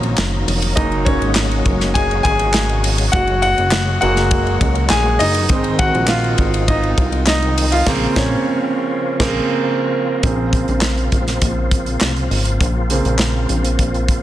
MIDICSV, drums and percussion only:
0, 0, Header, 1, 2, 480
1, 0, Start_track
1, 0, Key_signature, -5, "minor"
1, 0, Tempo, 592300
1, 621, Time_signature, 4, 2, 24, 8
1, 11529, End_track
2, 0, Start_track
2, 0, Title_t, "Drums"
2, 26, Note_on_c, 9, 51, 38
2, 107, Note_off_c, 9, 51, 0
2, 143, Note_on_c, 9, 39, 73
2, 146, Note_on_c, 9, 51, 65
2, 148, Note_on_c, 9, 38, 97
2, 224, Note_off_c, 9, 39, 0
2, 227, Note_off_c, 9, 51, 0
2, 229, Note_off_c, 9, 38, 0
2, 389, Note_on_c, 9, 46, 79
2, 389, Note_on_c, 9, 51, 65
2, 470, Note_off_c, 9, 46, 0
2, 470, Note_off_c, 9, 51, 0
2, 503, Note_on_c, 9, 51, 48
2, 584, Note_off_c, 9, 51, 0
2, 624, Note_on_c, 9, 36, 111
2, 624, Note_on_c, 9, 44, 62
2, 624, Note_on_c, 9, 51, 70
2, 705, Note_off_c, 9, 36, 0
2, 706, Note_off_c, 9, 44, 0
2, 706, Note_off_c, 9, 51, 0
2, 743, Note_on_c, 9, 51, 32
2, 824, Note_off_c, 9, 51, 0
2, 863, Note_on_c, 9, 36, 101
2, 863, Note_on_c, 9, 51, 55
2, 944, Note_off_c, 9, 36, 0
2, 944, Note_off_c, 9, 51, 0
2, 987, Note_on_c, 9, 51, 35
2, 1068, Note_off_c, 9, 51, 0
2, 1094, Note_on_c, 9, 39, 81
2, 1100, Note_on_c, 9, 38, 104
2, 1103, Note_on_c, 9, 51, 86
2, 1175, Note_off_c, 9, 39, 0
2, 1181, Note_off_c, 9, 38, 0
2, 1184, Note_off_c, 9, 51, 0
2, 1227, Note_on_c, 9, 51, 34
2, 1308, Note_off_c, 9, 51, 0
2, 1341, Note_on_c, 9, 51, 48
2, 1343, Note_on_c, 9, 36, 77
2, 1422, Note_off_c, 9, 51, 0
2, 1424, Note_off_c, 9, 36, 0
2, 1464, Note_on_c, 9, 38, 38
2, 1469, Note_on_c, 9, 51, 48
2, 1545, Note_off_c, 9, 38, 0
2, 1550, Note_off_c, 9, 51, 0
2, 1583, Note_on_c, 9, 36, 82
2, 1586, Note_on_c, 9, 51, 83
2, 1664, Note_off_c, 9, 36, 0
2, 1667, Note_off_c, 9, 51, 0
2, 1711, Note_on_c, 9, 51, 29
2, 1792, Note_off_c, 9, 51, 0
2, 1822, Note_on_c, 9, 36, 80
2, 1828, Note_on_c, 9, 51, 57
2, 1903, Note_off_c, 9, 36, 0
2, 1909, Note_off_c, 9, 51, 0
2, 1940, Note_on_c, 9, 51, 38
2, 2021, Note_off_c, 9, 51, 0
2, 2055, Note_on_c, 9, 39, 76
2, 2058, Note_on_c, 9, 51, 69
2, 2061, Note_on_c, 9, 38, 87
2, 2136, Note_off_c, 9, 39, 0
2, 2139, Note_off_c, 9, 51, 0
2, 2142, Note_off_c, 9, 38, 0
2, 2182, Note_on_c, 9, 51, 31
2, 2263, Note_off_c, 9, 51, 0
2, 2301, Note_on_c, 9, 46, 74
2, 2301, Note_on_c, 9, 51, 60
2, 2382, Note_off_c, 9, 46, 0
2, 2382, Note_off_c, 9, 51, 0
2, 2416, Note_on_c, 9, 51, 46
2, 2497, Note_off_c, 9, 51, 0
2, 2536, Note_on_c, 9, 44, 63
2, 2536, Note_on_c, 9, 51, 71
2, 2539, Note_on_c, 9, 36, 116
2, 2617, Note_off_c, 9, 44, 0
2, 2617, Note_off_c, 9, 51, 0
2, 2620, Note_off_c, 9, 36, 0
2, 2653, Note_on_c, 9, 51, 33
2, 2734, Note_off_c, 9, 51, 0
2, 2775, Note_on_c, 9, 51, 59
2, 2856, Note_off_c, 9, 51, 0
2, 2899, Note_on_c, 9, 51, 35
2, 2980, Note_off_c, 9, 51, 0
2, 3010, Note_on_c, 9, 39, 87
2, 3015, Note_on_c, 9, 38, 117
2, 3018, Note_on_c, 9, 51, 81
2, 3091, Note_off_c, 9, 39, 0
2, 3097, Note_off_c, 9, 38, 0
2, 3099, Note_off_c, 9, 51, 0
2, 3255, Note_on_c, 9, 51, 51
2, 3336, Note_off_c, 9, 51, 0
2, 3374, Note_on_c, 9, 38, 35
2, 3379, Note_on_c, 9, 51, 44
2, 3455, Note_off_c, 9, 38, 0
2, 3460, Note_off_c, 9, 51, 0
2, 3492, Note_on_c, 9, 51, 85
2, 3496, Note_on_c, 9, 36, 92
2, 3573, Note_off_c, 9, 51, 0
2, 3577, Note_off_c, 9, 36, 0
2, 3620, Note_on_c, 9, 51, 30
2, 3701, Note_off_c, 9, 51, 0
2, 3735, Note_on_c, 9, 36, 94
2, 3737, Note_on_c, 9, 51, 57
2, 3816, Note_off_c, 9, 36, 0
2, 3818, Note_off_c, 9, 51, 0
2, 3852, Note_on_c, 9, 51, 35
2, 3933, Note_off_c, 9, 51, 0
2, 3967, Note_on_c, 9, 39, 82
2, 3970, Note_on_c, 9, 51, 66
2, 3973, Note_on_c, 9, 38, 97
2, 4048, Note_off_c, 9, 39, 0
2, 4051, Note_off_c, 9, 51, 0
2, 4054, Note_off_c, 9, 38, 0
2, 4216, Note_on_c, 9, 46, 84
2, 4216, Note_on_c, 9, 51, 68
2, 4297, Note_off_c, 9, 46, 0
2, 4297, Note_off_c, 9, 51, 0
2, 4332, Note_on_c, 9, 51, 51
2, 4413, Note_off_c, 9, 51, 0
2, 4449, Note_on_c, 9, 44, 63
2, 4449, Note_on_c, 9, 51, 70
2, 4455, Note_on_c, 9, 36, 106
2, 4530, Note_off_c, 9, 44, 0
2, 4530, Note_off_c, 9, 51, 0
2, 4536, Note_off_c, 9, 36, 0
2, 4571, Note_on_c, 9, 51, 36
2, 4652, Note_off_c, 9, 51, 0
2, 4690, Note_on_c, 9, 51, 55
2, 4694, Note_on_c, 9, 36, 94
2, 4771, Note_off_c, 9, 51, 0
2, 4775, Note_off_c, 9, 36, 0
2, 4819, Note_on_c, 9, 51, 32
2, 4900, Note_off_c, 9, 51, 0
2, 4924, Note_on_c, 9, 39, 90
2, 4930, Note_on_c, 9, 38, 104
2, 4932, Note_on_c, 9, 51, 93
2, 5005, Note_off_c, 9, 39, 0
2, 5011, Note_off_c, 9, 38, 0
2, 5013, Note_off_c, 9, 51, 0
2, 5057, Note_on_c, 9, 51, 33
2, 5138, Note_off_c, 9, 51, 0
2, 5169, Note_on_c, 9, 51, 49
2, 5174, Note_on_c, 9, 36, 73
2, 5250, Note_off_c, 9, 51, 0
2, 5255, Note_off_c, 9, 36, 0
2, 5299, Note_on_c, 9, 51, 46
2, 5380, Note_off_c, 9, 51, 0
2, 5414, Note_on_c, 9, 51, 85
2, 5415, Note_on_c, 9, 36, 87
2, 5495, Note_off_c, 9, 51, 0
2, 5496, Note_off_c, 9, 36, 0
2, 5538, Note_on_c, 9, 51, 29
2, 5619, Note_off_c, 9, 51, 0
2, 5654, Note_on_c, 9, 36, 91
2, 5656, Note_on_c, 9, 51, 53
2, 5735, Note_off_c, 9, 36, 0
2, 5737, Note_off_c, 9, 51, 0
2, 5773, Note_on_c, 9, 51, 38
2, 5854, Note_off_c, 9, 51, 0
2, 5888, Note_on_c, 9, 39, 73
2, 5891, Note_on_c, 9, 51, 69
2, 5894, Note_on_c, 9, 38, 97
2, 5969, Note_off_c, 9, 39, 0
2, 5972, Note_off_c, 9, 51, 0
2, 5975, Note_off_c, 9, 38, 0
2, 6016, Note_on_c, 9, 51, 32
2, 6097, Note_off_c, 9, 51, 0
2, 6140, Note_on_c, 9, 46, 78
2, 6140, Note_on_c, 9, 51, 67
2, 6221, Note_off_c, 9, 46, 0
2, 6221, Note_off_c, 9, 51, 0
2, 6257, Note_on_c, 9, 51, 45
2, 6338, Note_off_c, 9, 51, 0
2, 6374, Note_on_c, 9, 38, 113
2, 6374, Note_on_c, 9, 49, 83
2, 6375, Note_on_c, 9, 36, 115
2, 6455, Note_off_c, 9, 38, 0
2, 6455, Note_off_c, 9, 49, 0
2, 6456, Note_off_c, 9, 36, 0
2, 6615, Note_on_c, 9, 36, 95
2, 6616, Note_on_c, 9, 38, 104
2, 6696, Note_off_c, 9, 36, 0
2, 6697, Note_off_c, 9, 38, 0
2, 7455, Note_on_c, 9, 36, 92
2, 7456, Note_on_c, 9, 38, 83
2, 7456, Note_on_c, 9, 49, 74
2, 7536, Note_off_c, 9, 36, 0
2, 7537, Note_off_c, 9, 38, 0
2, 7537, Note_off_c, 9, 49, 0
2, 8292, Note_on_c, 9, 42, 76
2, 8294, Note_on_c, 9, 36, 109
2, 8373, Note_off_c, 9, 42, 0
2, 8375, Note_off_c, 9, 36, 0
2, 8532, Note_on_c, 9, 36, 94
2, 8532, Note_on_c, 9, 42, 63
2, 8613, Note_off_c, 9, 36, 0
2, 8613, Note_off_c, 9, 42, 0
2, 8655, Note_on_c, 9, 42, 35
2, 8736, Note_off_c, 9, 42, 0
2, 8761, Note_on_c, 9, 39, 73
2, 8767, Note_on_c, 9, 38, 107
2, 8843, Note_off_c, 9, 39, 0
2, 8848, Note_off_c, 9, 38, 0
2, 8895, Note_on_c, 9, 42, 31
2, 8976, Note_off_c, 9, 42, 0
2, 9012, Note_on_c, 9, 42, 55
2, 9014, Note_on_c, 9, 36, 66
2, 9093, Note_off_c, 9, 42, 0
2, 9095, Note_off_c, 9, 36, 0
2, 9134, Note_on_c, 9, 38, 31
2, 9139, Note_on_c, 9, 42, 48
2, 9215, Note_off_c, 9, 38, 0
2, 9220, Note_off_c, 9, 42, 0
2, 9251, Note_on_c, 9, 42, 84
2, 9253, Note_on_c, 9, 36, 80
2, 9332, Note_off_c, 9, 42, 0
2, 9334, Note_off_c, 9, 36, 0
2, 9493, Note_on_c, 9, 36, 84
2, 9495, Note_on_c, 9, 42, 59
2, 9574, Note_off_c, 9, 36, 0
2, 9576, Note_off_c, 9, 42, 0
2, 9614, Note_on_c, 9, 42, 39
2, 9695, Note_off_c, 9, 42, 0
2, 9730, Note_on_c, 9, 39, 68
2, 9736, Note_on_c, 9, 38, 87
2, 9811, Note_off_c, 9, 39, 0
2, 9817, Note_off_c, 9, 38, 0
2, 9858, Note_on_c, 9, 42, 30
2, 9939, Note_off_c, 9, 42, 0
2, 9979, Note_on_c, 9, 46, 70
2, 10060, Note_off_c, 9, 46, 0
2, 10093, Note_on_c, 9, 42, 57
2, 10174, Note_off_c, 9, 42, 0
2, 10216, Note_on_c, 9, 36, 105
2, 10216, Note_on_c, 9, 42, 77
2, 10297, Note_off_c, 9, 36, 0
2, 10297, Note_off_c, 9, 42, 0
2, 10453, Note_on_c, 9, 42, 65
2, 10534, Note_off_c, 9, 42, 0
2, 10576, Note_on_c, 9, 42, 39
2, 10657, Note_off_c, 9, 42, 0
2, 10687, Note_on_c, 9, 39, 72
2, 10693, Note_on_c, 9, 38, 100
2, 10768, Note_off_c, 9, 39, 0
2, 10774, Note_off_c, 9, 38, 0
2, 10934, Note_on_c, 9, 42, 51
2, 11015, Note_off_c, 9, 42, 0
2, 11058, Note_on_c, 9, 42, 51
2, 11139, Note_off_c, 9, 42, 0
2, 11175, Note_on_c, 9, 36, 73
2, 11175, Note_on_c, 9, 42, 83
2, 11256, Note_off_c, 9, 36, 0
2, 11256, Note_off_c, 9, 42, 0
2, 11300, Note_on_c, 9, 42, 29
2, 11381, Note_off_c, 9, 42, 0
2, 11414, Note_on_c, 9, 36, 86
2, 11420, Note_on_c, 9, 42, 64
2, 11495, Note_off_c, 9, 36, 0
2, 11501, Note_off_c, 9, 42, 0
2, 11529, End_track
0, 0, End_of_file